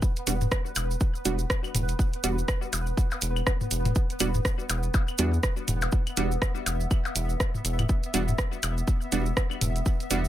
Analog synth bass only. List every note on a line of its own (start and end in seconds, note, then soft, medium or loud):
0.27 0.46 E1 loud
0.76 0.96 E1 medium
1.25 1.45 E1 loud
1.74 1.94 E1 loud
2.24 2.43 E1 medium
2.73 2.92 E1 medium
3.22 3.41 E1 loud
3.71 3.91 E1 loud
4.20 4.40 E1 loud
4.70 4.89 E1 medium
5.19 5.38 E2 medium
5.68 5.87 E1 loud
6.17 6.37 E1 medium
6.66 6.86 E1 medium
7.16 7.35 E1 medium
7.65 7.84 E1 medium
8.14 8.33 E1 loud
8.63 8.82 E1 medium
9.12 9.32 E1 loud
9.61 9.81 E1 loud
10.11 10.28 E1 loud